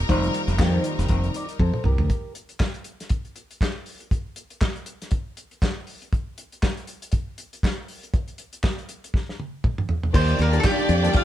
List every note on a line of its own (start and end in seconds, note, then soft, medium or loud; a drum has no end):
0.00 2.06 G3 medium
0.00 2.06 D#4 medium
0.00 2.06 A#4 medium
0.09 0.28 F1 loud
0.09 0.52 D#3 medium
0.09 0.52 G3 medium
0.09 0.53 A#3 medium
0.09 0.53 C4 medium
0.09 0.53 F4 medium
0.09 kick loud
0.09 closed hi-hat medium
0.23 closed hi-hat soft
0.34 closed hi-hat medium
0.48 0.56 F1 loud
0.48 closed hi-hat soft
0.58 0.78 F2 loud
0.58 1.45 D#3 medium
0.58 1.45 G3 medium
0.58 1.45 A#3 medium
0.58 1.45 C4 medium
0.58 1.46 F4 medium
0.58 kick loud
0.58 snare loud
0.58 clap medium
0.84 closed hi-hat medium
0.99 1.07 F1 medium
0.99 snare soft
0.99 closed hi-hat medium
1.08 1.28 F1 loud
1.08 kick loud
1.08 closed hi-hat medium
1.24 closed hi-hat soft
1.34 1.60 A#4 medium
1.34 1.59 D5 medium
1.34 closed hi-hat medium
1.49 closed hi-hat soft
1.59 1.70 F2 medium
1.59 1.84 A4 medium
1.59 1.84 C5 medium
1.59 kick loud
1.59 high tom medium
1.74 mid tom medium
1.84 1.95 C2 medium
1.84 2.33 G4 medium
1.84 2.33 A#4 medium
1.84 mid tom medium
1.98 2.07 D2 medium
1.98 floor tom medium
2.10 kick loud
2.10 closed hi-hat medium
2.35 closed hi-hat medium
2.49 closed hi-hat soft
2.60 kick loud
2.60 snare loud
2.60 clap medium
2.74 closed hi-hat soft
2.84 closed hi-hat medium
3.00 snare soft
3.00 closed hi-hat soft
3.09 kick loud
3.09 closed hi-hat medium
3.25 closed hi-hat soft
3.36 closed hi-hat medium
3.51 closed hi-hat soft
3.61 kick loud
3.61 snare loud
3.61 clap medium
3.86 open hi-hat soft
4.00 closed hi-hat soft
4.11 kick loud
4.11 closed hi-hat medium
4.36 closed hi-hat medium
4.50 closed hi-hat soft
4.61 kick loud
4.61 snare loud
4.61 clap medium
4.76 closed hi-hat soft
4.86 closed hi-hat medium
5.02 snare soft
5.02 closed hi-hat medium
5.11 kick loud
5.11 closed hi-hat medium
5.37 closed hi-hat medium
5.51 closed hi-hat soft
5.62 kick loud
5.62 snare loud
5.62 clap medium
5.87 open hi-hat medium
6.02 closed hi-hat soft
6.13 kick loud
6.13 closed hi-hat medium
6.38 closed hi-hat medium
6.52 closed hi-hat soft
6.63 kick loud
6.63 snare loud
6.63 clap medium
6.77 closed hi-hat soft
6.87 closed hi-hat medium
7.02 closed hi-hat medium
7.12 kick loud
7.12 closed hi-hat medium
7.38 closed hi-hat medium
7.53 closed hi-hat soft
7.63 kick loud
7.63 snare loud
7.63 clap medium
7.88 open hi-hat medium
8.03 closed hi-hat soft
8.14 kick loud
8.14 closed hi-hat medium
8.28 closed hi-hat soft
8.38 closed hi-hat medium
8.53 closed hi-hat soft
8.63 kick loud
8.63 snare loud
8.63 clap medium
8.78 closed hi-hat soft
8.89 closed hi-hat medium
9.04 closed hi-hat medium
9.14 kick loud
9.14 snare soft
9.29 snare soft
9.40 high tom medium
9.64 kick medium
9.64 mid tom medium
9.78 mid tom medium
9.89 floor tom medium
10.03 floor tom medium
10.13 10.33 D#2 loud
10.13 10.46 D#3 medium
10.13 10.46 G3 medium
10.13 10.46 A#3 medium
10.13 11.24 D4 medium
10.13 10.47 D4 medium
10.13 11.24 F4 medium
10.13 10.47 F4 medium
10.13 10.40 C5 loud
10.13 11.24 D5 loud
10.13 11.24 D5 medium
10.13 11.24 G5 medium
10.13 kick loud
10.13 crash loud
10.28 closed hi-hat soft
10.39 10.58 D#2 medium
10.39 10.59 A#4 loud
10.39 closed hi-hat medium
10.52 10.94 D#3 medium
10.52 10.94 G3 medium
10.52 10.94 A#3 medium
10.52 10.94 D4 medium
10.52 10.95 F4 medium
10.52 closed hi-hat medium
10.60 10.65 A4 medium
10.64 11.16 G4 medium
10.64 kick loud
10.64 snare loud
10.64 clap loud
10.78 closed hi-hat soft
10.89 11.08 F2 medium
10.89 closed hi-hat medium
11.03 11.24 D#3 medium
11.03 11.08 F3 medium
11.03 11.24 A#3 medium
11.03 11.24 D4 medium
11.03 11.24 F4 medium
11.03 closed hi-hat medium
11.09 11.24 G3 medium
11.13 11.24 F4 medium
11.13 kick loud
11.13 closed hi-hat medium